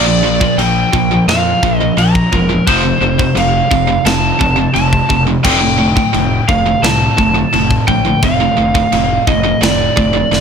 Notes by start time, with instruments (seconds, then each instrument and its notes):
Already playing: fingered electric bass A#1, lead electric guitar D5
0.06 distorted electric guitar A#2 F3
0.24 distorted electric guitar A#2 F3
0.41 distorted electric guitar A#2 F3, kick
0.58 fingered electric bass A#1, distorted electric guitar A#2 F3, lead electric guitar G5, china
0.93 fingered electric bass A#1, distorted electric guitar A#2 F3, kick
1.11 distorted electric guitar A#2 F3
1.27 fingered electric bass F2, distorted electric guitar A#2 F3, lead electric guitar F5, snare, china
1.63 fingered electric bass A#1, distorted electric guitar A#2 F3, kick
1.77 lead electric guitar D#5
1.81 distorted electric guitar A#2 F3
1.97 fingered electric bass A#1, distorted electric guitar A#2 F3, lead electric guitar A#5, china
2.15 kick
2.33 fingered electric bass E1, distorted electric guitar A#2 F3, lead electric guitar A#4, kick
2.50 distorted electric guitar A#2 F3
2.67 fingered electric bass F1, distorted electric guitar F2 C3 F3, lead electric guitar C5, kick, china
2.84 distorted electric guitar F2 C3
3.01 fingered electric bass F1, distorted electric guitar F2 C3
3.18 distorted electric guitar F2 C3, kick
3.35 fingered electric bass F1, distorted electric guitar F2 C3, lead electric guitar F5, china
3.71 fingered electric bass F1, distorted electric guitar F2 C3, kick
3.89 distorted electric guitar F2 C3
4.06 fingered electric bass F1, distorted electric guitar F2 C3, lead electric guitar A5, snare, china
4.41 fingered electric bass F1, distorted electric guitar F2 C3, kick
4.58 distorted electric guitar F2 C3
4.74 fingered electric bass F1, distorted electric guitar F2 C3, lead electric guitar A5, china
4.93 kick
5.10 fingered electric bass F1, distorted electric guitar F2 C3, kick
5.27 distorted electric guitar F2 C3
5.44 fingered electric bass F1, distorted electric guitar D2 A2 D3, lead electric guitar G5, kick, china, crash
5.62 distorted electric guitar D2 A2
5.79 distorted electric guitar D2 A2
5.96 distorted electric guitar D2 A2, kick
6.14 fingered electric bass F1, distorted electric guitar D2 A2, china
6.49 fingered electric bass F1, distorted electric guitar D2 A2, lead electric guitar F5, kick
6.66 distorted electric guitar D2 A2
6.82 fingered electric bass C2, distorted electric guitar D2 A2, lead electric guitar A5, snare, china
7.18 fingered electric bass F1, distorted electric guitar D2 A2, kick
7.36 distorted electric guitar D2 A2
7.53 fingered electric bass F1, distorted electric guitar D2 A2, china
7.71 kick
7.88 fingered electric bass A#1, distorted electric guitar D2 A2, lead electric guitar G5, kick
8.07 distorted electric guitar D2 A2
8.23 fingered electric bass F1, distorted electric guitar D2 A2, lead electric guitar F5, kick, china
8.41 distorted electric guitar D2 A2
8.58 fingered electric bass F1, distorted electric guitar D2 A2
8.75 distorted electric guitar D2 A2, kick
8.92 fingered electric bass F1, distorted electric guitar D2 A2, china
9.27 fingered electric bass F1, distorted electric guitar D2 A2, lead electric guitar D#5, kick
9.45 distorted electric guitar D2 A2
9.62 fingered electric bass F1, distorted electric guitar D2 A2, lead electric guitar D5, snare, china
9.97 fingered electric bass F1, distorted electric guitar D2 A2, kick
10.14 distorted electric guitar D2 A2
10.32 fingered electric bass F1, distorted electric guitar D2 A2, snare